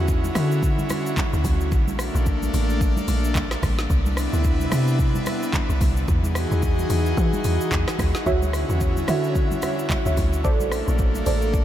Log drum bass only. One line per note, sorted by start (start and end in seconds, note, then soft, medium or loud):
0.00 0.31 E2 medium
0.35 0.84 D3 loud
1.33 1.43 D2 loud
1.45 1.73 D2 loud
1.72 2.10 A#1 loud
2.15 2.49 A#1 loud
2.54 3.02 A1 loud
3.08 3.56 A#1 medium
3.63 3.87 A1 loud
3.90 4.28 C2 loud
4.33 4.67 D2 medium
4.72 5.20 C3 loud
5.69 5.80 C2 loud
5.81 6.05 C2 loud
6.08 6.46 E2 loud
6.51 6.86 E2 loud
6.90 7.14 E2 loud
7.17 7.31 E3 loud
7.45 7.59 E2 loud
7.72 7.86 E2 loud
7.99 8.13 D#2 loud
8.26 8.64 D2 loud
8.70 9.04 E2 medium
9.08 9.56 D3 loud
10.06 10.16 D2 loud
10.17 10.46 D2 loud
10.45 10.83 A#1 loud
10.88 11.22 A#1 loud
11.27 11.64 A1 loud